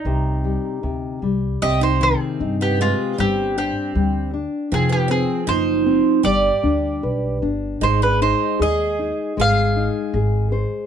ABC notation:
X:1
M:2/4
L:1/16
Q:1/4=77
K:Cm
V:1 name="Mandolin"
E6 z2 | e c A3 G F2 | G2 G4 z2 | A G A2 c4 |
d6 z2 | c =B c2 e4 | f6 z2 |]
V:2 name="Twelve-string acoustic guitar"
z8 | G E C3 =B, A,2 | C2 C4 z2 | C =B, C2 E4 |
G6 z2 | E D E2 A4 | A6 z2 |]
V:3 name="Nylon-string guitar"
C,2 G,2 C,2 G,2 | C,2 E,2 E2 G2 | G,2 D2 G,2 D2 | F,2 C2 E2 C2 |
G,2 D2 =B2 D2 | A,2 E2 A2 E2 | A,2 E2 A2 c2 |]
V:4 name="Upright bass" clef=bass
C,,4 D,,2 C,,2 | C,,4 G,,4 | G,,,4 D,,4 | F,,,4 ^F,,,4 |
G,,,2 D,,2 =B,,,2 G,,,2 | A,,,4 E,,4 | A,,,4 A,,,4 |]